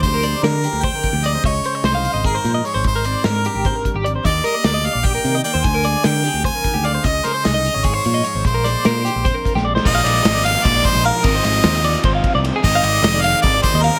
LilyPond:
<<
  \new Staff \with { instrumentName = "Harmonica" } { \time 7/8 \key bes \mixolydian \tempo 4 = 150 c''4 bes'4 g''4 ees''8 | des''4 c''4 bes'4 des''8 | c''4 bes'4. r4 | d''8 ees''8 d''8 f''8 g''4 g''8 |
aes''4 g''4 aes''4 f''8 | ees''8 c''8 ees''4 des''4. | c''2. r8 | ees''4. f''8 d''8 c''8 bes'8 |
ees''2 r4. | ees''4. f''8 d''8 c''8 bes'8 | }
  \new Staff \with { instrumentName = "Clean electric guitar" } { \time 7/8 \key bes \mixolydian c''16 bes'16 d''8 bes'8 g'8 c''16 bes'8 g'16 d''16 c''16 | ees''8 c''16 ees''16 c''16 f''8 ees''16 aes'16 c''8 ees''16 des''16 c''16~ | c''16 bes'16 d''8 bes'8 g'8 c''16 bes'8 g'16 d''16 c''16 | ees''8 bes'16 d''16 bes'16 ees''8 d''16 g'16 bes'8 ees''16 d''16 c''16~ |
c''16 bes'16 d''8 bes'8 g'8 c''16 bes'8 g'16 d''16 c''16 | ees''8 bes'16 c''16 aes'16 ees''8 des''16 aes'16 c''8 ees''16 des''16 c''16~ | c''16 bes'16 d''8 bes'8 g'8 c''16 bes'8 g'16 d''16 c''16 | r16 f''16 d''8 ees''16 d''16 f''8 ees''16 d''8 ees''16 f''16 bes'16~ |
bes'16 c''16 ees''8 c''16 ees''16 d''8 c''16 f''8 d''16 c''16 aes'16 | r16 f''16 d''8 ees''16 d''16 f''8 ees''16 d''8 ees''16 f''16 bes'16 | }
  \new Staff \with { instrumentName = "Clean electric guitar" } { \clef bass \time 7/8 \key bes \mixolydian << { <f aes c' g'>8 aes8 c'8 g'4. aes8~ | aes8 aes8 ees'8 f'4. aes8~ | aes8 c'8 d'8 g'2 | <bes d' g'>8 aes16 bes16 d'8 g'4. bes8 |
r8 aes8 bes16 c'16 aes'2 | r8 aes8 ees'8 ees'16 f'4~ f'16 aes8~ | aes8 aes8 d'8 g'4. aes8~ | aes2.~ aes8 |
r2. r8 | r2. r8 | } \\ { d2 d8 f4 | des2 aes,8 f4 | aes,2 aes,8 g,8 f,8 | r2 bes,8 ees4 |
d2 f8 ees8 d8 | des2 aes,8 f4 | bes,2 f,8 f4 | r2. r8 |
r2. r8 | r2. r8 | } >> }
  \new Staff \with { instrumentName = "Overdriven electric guitar" } { \clef bass \time 7/8 \key bes \mixolydian r2. r8 | r2. r8 | r2. r8 | r2. r8 |
r2. r8 | r2. r8 | r2. r8 | <bes, f bes ees' f'>2.~ <bes, f bes ees' f'>8 |
<f, c f aes c' ees'>2.~ <f, c f aes c' ees'>8 | <aes, ees aes c' ees'>2.~ <aes, ees aes c' ees'>8 | }
  \new Staff \with { instrumentName = "Picked electric bass" } { \clef bass \time 7/8 \key bes \mixolydian d,4 d8. d,8 r8 d,8. | des,8 r8 c,8. aes,,8. bes,8 r16 aes,,16 | aes,,4 aes,8. aes,,8 r8 aes,,8. | ees,8 r8 d,8. bes,,8. c8 r16 ees,16 |
d,4 d8. d,8 r8 d,8. | des,8 r8 c,8. aes,,8. bes,8 r16 aes,,16 | bes,,4 bes,8. bes,,8 r8 bes,,8. | bes,,8 bes,,8 aes,,4 bes,,8 r16 bes,,8 r16 |
aes,,8 aes,,8 ees,4 aes,,8 r16 c,8 r16 | aes,,8 aes,,8 f,,4 aes,,8 r16 ees,8 r16 | }
  \new DrumStaff \with { instrumentName = "Drums" } \drummode { \time 7/8 <hh bd>8 hh8 <hh sn>8 hh8 <hh bd>8 <hh bd>8 hh8 | <hh bd>8 hh8 <hh sn>8 hh8 <hh bd>8 hh8 hh8 | <hh bd>8 hh8 <hh sn>8 hh8 <hh bd>8 <hh bd>8 hh8 | <hh bd>8 hh8 <hh sn>8 hh8 <hh bd>8 hh8 hh8 |
<hh bd>8 hh8 <hh sn>8 <hh sn>8 <hh bd>8 <hh bd>8 hh8 | <hh bd>8 <hh sn>8 <hh sn>8 hh8 <hh bd sn>8 hh8 hh8 | <hh bd>8 <hh sn>8 <hh sn>8 <hh sn>8 <hh bd>8 <hh bd>16 sn8 sn16 | <cymc bd>8 <cymr sn>8 <cymr sn>8 <cymr sn>8 <bd cymr>8 <bd cymr>8 cymr8 |
<bd cymr>8 <cymr sn>8 <cymr sn>8 cymr8 <bd cymr sn>8 <bd cymr>8 <cymr sn>8 | <bd cymr>8 cymr8 <cymr sn>8 <cymr sn>8 <bd cymr sn>8 <bd cymr sn>8 <cymr sn>8 | }
>>